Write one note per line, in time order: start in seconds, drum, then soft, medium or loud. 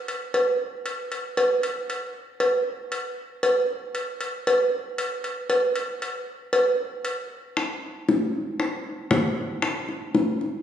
0.08 cowbell medium
0.34 cowbell loud
0.86 cowbell medium
1.12 cowbell medium
1.37 cowbell loud
1.63 cowbell medium
1.90 cowbell medium
2.40 cowbell loud
2.92 cowbell medium
3.43 cowbell loud
3.95 cowbell medium
4.21 cowbell medium
4.47 cowbell loud
4.98 cowbell medium
5.24 cowbell medium
5.50 cowbell loud
5.76 cowbell medium
6.02 cowbell medium
6.53 cowbell loud
7.05 cowbell medium
7.57 high bongo medium
8.09 high bongo medium
8.60 high bongo medium
9.11 high bongo medium
9.11 low bongo medium
9.62 high bongo medium
9.89 high bongo soft
10.15 high bongo medium
10.41 high bongo soft